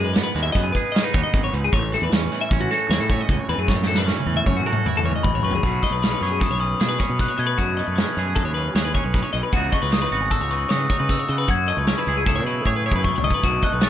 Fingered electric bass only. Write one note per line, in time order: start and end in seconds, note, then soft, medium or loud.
0.00 0.19 F#2 medium
0.35 0.50 D#2 medium
0.55 0.70 F#2 medium
1.14 1.22 D#2 medium
1.34 1.49 G#1 medium
1.53 1.68 C#2 medium
1.73 1.95 A1 medium
2.02 2.09 E2 medium
2.12 2.27 E2 medium
2.51 2.66 A1 medium
2.89 2.97 E2 medium
2.99 3.22 A2 medium
3.29 3.36 C#2 loud
3.49 3.56 E2 medium
3.58 4.11 F#2 medium
4.26 4.42 E2 medium
4.46 4.61 F#2 medium
5.03 5.11 E2 medium
5.25 5.40 A1 medium
5.43 5.58 F#2 medium
5.63 5.78 B1 medium
5.91 6.14 B1 medium
6.21 6.44 F#2 medium
6.50 6.73 B1 medium
6.81 6.96 B2 medium
7.09 7.25 B2 medium
7.39 7.54 B2 medium
7.58 7.81 F#2 medium
7.88 8.03 F#2 medium
8.17 8.46 F#2 medium
8.46 8.69 D#2 medium
8.75 8.98 D#2 medium
9.04 9.20 B1 medium
9.34 9.41 B1 medium
9.53 9.68 C#2 loud
9.83 10.05 C#2 medium
10.11 10.34 G#1 medium
10.41 10.64 C#2 medium
10.70 10.86 C#3 medium
11.00 11.15 C#3 medium
11.29 11.44 C#3 loud
11.48 11.71 F#2 loud
11.77 11.92 C#2 medium
12.07 12.38 C#2 loud
12.37 12.59 B2 medium
12.65 12.88 A2 medium
12.94 13.10 F#2 medium
13.23 13.31 C#2 medium
13.44 13.59 B1 medium
13.72 13.89 B1 medium